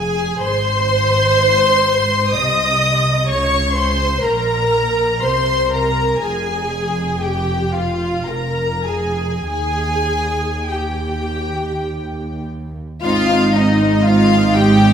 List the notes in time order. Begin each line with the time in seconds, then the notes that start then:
Already playing: F1 F2 G#4 G#5
0.43 G#1 G#2 C5 C6
2.35 C2 C3 D#5 D#6
3.28 C#2 C#3 C#5 C#6
3.75 C5 C6
4.23 A#1 A#2 A#4 A#5
5.23 C2 C3 C5 C6
5.72 A#4 A#5
6.22 F1 F2 G#4 G#5
7.21 G4 G5
7.74 F4 F5
8.27 F1 F2 A#4 A#5
8.85 G#4 G#5
9.47 D#2 G#4 G#5
10.69 G4 G5
13.03 G#1 G#2 C4 D#4 F4 F5
13.31 C4 D#4
13.56 C4 D#4 D#5
13.83 C4 D#4
14.06 C4 D#4 F4 F5
14.33 C4 D#4
14.56 C4 D#4 G4 G5
14.81 C4 D#4